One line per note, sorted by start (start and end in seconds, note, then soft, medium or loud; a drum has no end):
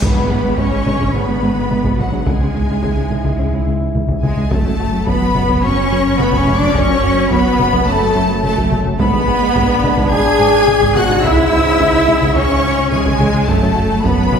0.01 2.28 G#1 medium
0.01 0.08 G#1 medium
0.01 0.11 G#2 medium
0.01 4.47 G#2 medium
0.01 2.23 D3 medium
0.01 0.11 G#3 medium
0.01 0.58 B3 medium
0.01 0.59 B3 medium
0.01 0.57 B4 medium
0.01 0.59 B5 medium
0.01 taiko medium
0.01 impact medium
0.16 0.22 G#1 soft
0.16 0.25 G#3 medium
0.16 0.24 D4 medium
0.29 0.36 G#1 medium
0.29 0.39 G#2 medium
0.29 0.38 G#4 medium
0.45 0.53 G#3 medium
0.57 0.64 G#1 medium
0.57 0.67 G#2 medium
0.57 0.67 G#3 medium
0.57 1.14 C#4 medium
0.57 1.13 C#4 medium
0.57 1.14 C#4 medium
0.57 1.15 C#5 medium
0.57 1.14 C#6 medium
0.57 taiko medium
0.72 0.81 G#3 medium
0.86 0.92 G#1 soft
0.86 0.95 G#3 medium
0.86 0.95 D4 medium
0.86 taiko mid medium
1.00 1.06 G#1 medium
1.00 1.09 G#2 medium
1.00 1.09 G#3 medium
1.00 taiko medium
1.14 1.20 G#1 soft
1.14 1.23 G#2 medium
1.14 1.98 B3 medium
1.14 1.99 B3 medium
1.14 1.23 G#4 medium
1.14 1.98 B4 medium
1.14 1.98 B5 medium
1.28 1.34 G#1 soft
1.28 1.37 G#3 medium
1.28 1.37 D4 medium
1.42 1.48 G#1 medium
1.42 1.51 G#2 medium
1.42 1.51 G#3 medium
1.57 1.65 G#2 medium
1.71 1.76 G#1 soft
1.71 1.79 G#2 medium
1.71 1.79 B3 medium
1.71 taiko mid medium
1.84 1.90 G#1 medium
1.84 1.93 G#2 medium
1.84 1.93 G#3 medium
1.84 taiko medium
1.97 2.04 G#1 medium
1.97 2.07 G#2 medium
1.97 2.26 F#3 medium
1.97 2.27 F#3 medium
1.97 2.07 B3 medium
1.97 2.26 F#4 medium
1.97 2.26 F#5 medium
1.97 taiko mid medium
2.12 2.18 G#1 soft
2.12 2.21 G#3 medium
2.12 2.21 D4 medium
2.26 2.32 C#2 medium
2.26 4.52 C#2 medium
2.26 2.36 C#2 medium
2.26 2.35 C#3 medium
2.26 3.64 G#3 medium
2.26 4.47 E4 medium
2.26 3.64 G#4 medium
2.26 3.67 G#5 medium
2.26 taiko loud
2.41 2.46 C#2 soft
2.41 2.49 C#3 medium
2.41 2.49 G#3 medium
2.55 2.60 C#2 medium
2.55 2.64 C#2 medium
2.55 2.63 C#4 medium
2.70 2.78 C#3 medium
2.82 2.88 C#2 medium
2.82 2.92 C#2 loud
2.82 2.91 C#3 medium
2.82 taiko medium
2.97 3.05 C#3 medium
3.11 3.17 C#2 medium
3.11 3.19 C#3 medium
3.11 3.20 G#3 medium
3.11 taiko mid medium
3.25 3.33 C#2 medium
3.25 3.31 C#2 medium
3.25 3.33 C#3 medium
3.25 taiko medium
3.39 3.47 C#2 medium
3.39 3.45 C#2 medium
3.39 3.47 C#4 medium
3.53 3.59 C#2 medium
3.53 3.61 C#3 medium
3.53 3.61 G#3 medium
3.66 3.75 C#2 medium
3.66 3.73 C#2 medium
3.66 3.75 C#3 medium
3.81 3.89 C#2 medium
3.95 4.03 C#2 medium
3.95 4.01 C#2 medium
3.95 4.03 E3 medium
3.95 taiko mid medium
4.09 4.14 C#2 medium
4.09 4.17 C#2 loud
4.09 4.17 C#3 medium
4.09 taiko medium
4.23 4.28 C#2 medium
4.23 4.32 C#2 medium
4.23 4.31 E3 medium
4.23 4.49 G#3 medium
4.23 4.49 G#4 medium
4.23 4.49 G#5 medium
4.23 taiko mid medium
4.37 4.43 C#2 medium
4.37 4.46 C#3 medium
4.37 4.46 G#3 medium
4.50 9.01 F#1 medium
4.50 4.57 F#1 medium
4.50 8.83 F#2 medium
4.50 4.60 F#2 medium
4.50 4.60 F#3 medium
4.50 5.06 A3 medium
4.50 8.83 C#4 medium
4.50 5.07 A4 medium
4.50 5.07 A5 loud
4.50 taiko loud
4.66 4.71 F#1 medium
4.66 4.74 F#3 medium
4.66 4.74 C#4 medium
4.79 4.85 F#1 medium
4.79 4.88 F#2 medium
4.79 4.88 F#4 medium
4.93 5.01 F#3 medium
5.06 5.13 F#1 medium
5.06 5.16 F#2 medium
5.06 5.16 F#3 medium
5.06 5.63 B3 medium
5.06 5.63 B4 medium
5.06 5.62 B5 loud
5.06 taiko medium
5.22 5.30 F#3 medium
5.35 5.41 F#1 medium
5.35 5.44 F#3 medium
5.35 5.44 C#4 medium
5.35 taiko mid medium
5.49 5.55 F#1 medium
5.49 5.58 F#2 medium
5.49 5.58 F#3 loud
5.49 taiko medium
5.62 5.69 F#1 medium
5.62 5.72 F#2 medium
5.62 6.18 C#4 loud
5.62 6.19 C#4 medium
5.62 6.20 C#4 medium
5.62 5.72 F#4 medium
5.62 6.19 C#5 medium
5.62 6.18 C#6 loud
5.77 5.83 F#1 medium
5.77 5.86 F#3 medium
5.77 5.86 C#4 medium
5.91 5.97 F#1 medium
5.91 6.00 F#2 loud
5.91 6.00 F#3 loud
6.05 6.14 F#2 medium
6.18 6.25 F#1 medium
6.18 6.28 F#2 medium
6.18 6.28 A3 medium
6.18 6.37 B3 medium
6.18 6.37 B3 loud
6.18 6.38 B3 medium
6.18 6.38 B4 medium
6.18 6.38 B5 loud
6.18 taiko mid medium
6.33 6.39 F#1 loud
6.33 6.41 F#2 loud
6.33 6.42 F#3 medium
6.33 taiko medium
6.37 6.56 C#4 medium
6.37 6.57 C#4 medium
6.37 6.57 C#4 loud
6.37 6.56 C#5 medium
6.37 6.57 C#6 loud
6.47 6.53 F#1 medium
6.47 6.55 F#2 medium
6.47 6.56 A3 medium
6.47 taiko mid medium
6.56 6.75 D4 loud
6.56 6.75 D4 medium
6.56 6.75 D5 loud
6.56 6.75 D6 loud
6.61 6.67 F#1 medium
6.61 6.70 F#3 medium
6.61 6.70 C#4 medium
6.74 6.81 F#1 loud
6.74 6.84 F#2 loud
6.74 6.83 F#3 loud
6.74 7.31 C#4 loud
6.74 7.30 C#4 loud
6.74 7.32 C#5 loud
6.74 7.31 C#6 loud
6.74 taiko loud
6.89 6.95 F#1 medium
6.89 6.98 F#3 medium
6.89 6.98 C#4 medium
7.03 7.09 F#1 medium
7.03 7.12 F#2 medium
7.03 7.12 F#4 medium
7.18 7.26 F#3 medium
7.31 7.37 F#1 medium
7.31 7.40 F#2 loud
7.31 7.39 F#3 medium
7.31 7.87 B3 loud
7.31 7.88 B3 loud
7.31 7.87 B4 loud
7.31 7.86 B5 loud
7.31 taiko medium
7.45 7.54 F#3 medium
7.59 7.65 F#1 medium
7.59 7.68 F#3 medium
7.59 7.68 C#4 medium
7.59 taiko mid medium
7.73 7.79 F#1 medium
7.73 7.82 F#2 loud
7.73 7.82 F#3 medium
7.73 taiko medium
7.87 7.93 F#1 medium
7.87 7.96 F#2 medium
7.87 8.42 A3 loud
7.87 8.42 A3 medium
7.87 8.42 A3 loud
7.87 7.96 F#4 medium
7.87 8.43 A4 loud
7.87 8.43 A5 loud
8.01 8.07 F#1 medium
8.01 8.10 F#3 medium
8.01 8.10 C#4 medium
8.15 8.21 F#1 medium
8.15 8.24 F#2 loud
8.15 8.24 F#3 loud
8.30 8.38 F#2 medium
8.43 8.49 F#1 medium
8.43 8.52 F#2 medium
8.43 8.71 A3 medium
8.43 8.52 A3 medium
8.43 8.71 A3 medium
8.43 8.71 A3 loud
8.43 8.71 A4 medium
8.43 8.71 A5 loud
8.43 taiko mid medium
8.57 8.63 F#1 loud
8.57 8.66 F#2 loud
8.57 8.66 F#3 medium
8.57 taiko medium
8.71 8.77 F#1 medium
8.71 8.80 F#2 medium
8.71 8.79 A3 medium
8.71 taiko mid medium
8.85 8.91 F#1 medium
8.85 8.94 F#3 medium
8.85 8.94 C#4 medium
8.99 9.05 G#1 loud
8.99 11.25 G#1 medium
8.99 9.08 G#2 loud
8.99 13.44 G#2 loud
8.99 9.08 G#3 loud
8.99 10.07 B3 loud
8.99 10.08 B3 loud
8.99 11.20 D4 loud
8.99 10.08 B4 loud
8.99 10.08 B5 loud
8.99 taiko loud
9.13 9.19 G#1 medium
9.13 9.22 G#3 medium
9.13 9.22 D4 medium
9.27 9.33 G#1 medium
9.27 9.36 G#2 medium
9.27 9.36 G#4 medium
9.42 9.50 G#3 medium
9.55 9.61 G#1 loud
9.55 9.64 G#2 loud
9.55 9.64 G#3 loud
9.55 taiko loud
9.69 9.78 G#3 medium
9.84 9.90 G#1 medium
9.84 9.92 G#3 medium
9.84 9.92 D4 medium
9.84 taiko mid medium
9.97 10.03 G#1 loud
9.97 10.06 G#2 loud
9.97 10.06 G#3 loud
9.97 taiko medium
10.11 10.17 G#1 medium
10.11 10.20 G#2 medium
10.11 10.94 G#4 loud
10.11 10.20 G#4 medium
10.11 10.96 G#4 loud
10.11 10.96 G#5 loud
10.11 10.94 G#6 loud
10.26 10.31 G#1 medium
10.26 10.34 G#3 medium
10.26 10.34 D4 medium
10.39 10.46 G#1 loud
10.39 10.48 G#2 loud
10.39 10.48 G#3 loud
10.53 10.62 G#2 medium
10.67 10.74 G#1 medium
10.67 10.76 G#2 medium
10.67 10.76 B3 medium
10.67 taiko mid medium
10.81 10.88 G#1 medium
10.81 10.90 G#2 loud
10.81 10.90 G#3 loud
10.81 taiko medium
10.95 11.02 G#1 medium
10.95 11.04 G#2 medium
10.95 11.04 B3 medium
10.95 11.24 F#4 loud
10.95 11.23 F#4 loud
10.95 11.24 F#4 loud
10.95 11.24 F#5 loud
10.95 11.24 F#6 loud
10.95 taiko mid medium
11.09 11.16 G#1 medium
11.09 11.18 G#3 medium
11.09 11.18 D4 medium
11.23 11.32 C#2 loud
11.23 13.50 C#2 medium
11.23 11.30 C#2 loud
11.23 11.32 C#3 loud
11.23 13.45 C#4 loud
11.23 12.34 E4 loud
11.23 12.36 E4 loud
11.23 12.37 E5 loud
11.23 12.36 E6 loud
11.23 taiko loud
11.38 11.44 C#2 medium
11.38 11.46 C#3 medium
11.38 11.46 G#3 medium
11.52 11.60 C#2 medium
11.52 11.58 C#2 medium
11.52 11.60 C#4 medium
11.66 11.75 C#3 medium
11.80 11.88 C#2 loud
11.80 11.86 C#2 medium
11.80 11.88 C#3 loud
11.80 taiko medium
11.94 12.03 C#3 medium
12.08 12.14 C#2 medium
12.08 12.17 C#3 medium
12.08 12.16 G#3 medium
12.08 taiko mid medium
12.22 12.27 C#2 loud
12.22 12.30 C#2 loud
12.22 12.31 C#3 medium
12.22 taiko medium
12.36 12.41 C#2 medium
12.36 12.45 C#2 medium
12.36 12.92 C#4 loud
12.36 12.44 C#4 medium
12.36 12.92 C#4 loud
12.36 12.93 C#4 loud
12.36 12.92 C#5 loud
12.36 12.91 C#6 loud
12.50 12.56 C#2 medium
12.50 12.59 C#3 medium
12.50 12.58 G#3 medium
12.63 12.70 C#2 loud
12.63 12.73 C#2 medium
12.63 12.72 C#3 loud
12.78 12.87 C#2 medium
12.91 13.00 C#2 medium
12.91 12.98 C#2 medium
12.91 13.00 E3 medium
12.91 13.47 G#3 loud
12.91 13.48 G#3 loud
12.91 13.47 G#3 loud
12.91 13.47 G#4 medium
12.91 13.47 G#5 loud
12.91 taiko mid medium
13.05 13.12 C#2 medium
13.05 13.14 C#2 loud
13.05 13.14 C#3 loud
13.05 taiko medium
13.19 13.28 C#2 medium
13.19 13.26 C#2 medium
13.19 13.28 E3 medium
13.19 taiko mid medium
13.33 13.40 C#2 medium
13.33 13.42 C#3 medium
13.33 13.42 G#3 medium
13.47 14.39 F#1 medium
13.47 13.54 F#2 loud
13.47 13.57 F#2 loud
13.47 14.39 F#2 medium
13.47 13.56 F#3 loud
13.47 14.04 A3 loud
13.47 14.05 A3 medium
13.47 14.04 A3 loud
13.47 14.39 C#4 loud
13.47 14.05 A4 medium
13.47 14.04 A5 loud
13.47 taiko medium
13.62 13.68 F#2 medium
13.62 13.71 F#3 medium
13.62 13.70 C#4 medium
13.75 13.82 F#2 medium
13.75 13.85 F#2 medium
13.75 13.84 F#4 medium
13.90 13.99 F#3 medium
14.04 14.10 F#2 loud
14.04 14.13 F#2 loud
14.04 14.13 F#3 loud
14.04 14.39 B3 medium
14.04 14.39 B3 loud
14.04 14.39 B4 medium
14.04 14.39 B5 loud
14.04 taiko loud
14.19 14.27 F#3 medium
14.32 14.38 F#2 medium
14.32 14.39 F#3 medium
14.32 14.39 C#4 medium
14.32 taiko mid medium